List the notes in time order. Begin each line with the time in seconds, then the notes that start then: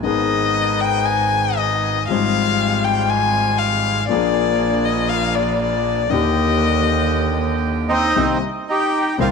0.03 G#1 G#2 D#3 G#3 B3 D#4 G#4 D#5
0.80 G5
1.05 G#5
1.57 D#5
2.07 G#1 G#2 F3 G3 G#3 C4 F4 F5
2.12 G3
2.84 G5
3.09 G#5
3.58 F5
4.08 A#1 A#2 F3 A#3 D4 G#4 D5
4.12 G#4
4.85 D#5
5.09 F5
5.34 D5
5.61 D5
6.10 D#2 D3 D#3 A#3 G4 D#5
7.89 C4 D#4 D#5
8.16 C2 C3 D#3 A#3 C4 D#4 G4
8.69 D#4 G4 G5
9.18 C2 C3 D#3 A#3 C4 D#4 F4 F5